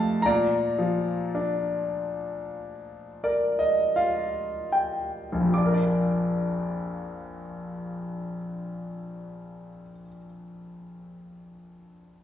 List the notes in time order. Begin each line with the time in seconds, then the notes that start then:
Already playing: F2 C3 A3 A4 D5 D#5 F5 A5
0.22 A#2 D5 A#5
0.79 F3
1.35 D4
3.24 A#4 D5
3.59 D#5
3.96 F4 F5
4.72 G5
5.32 A#1
5.41 F2
5.49 F3
5.54 D4 D6
5.66 A#4
5.74 D5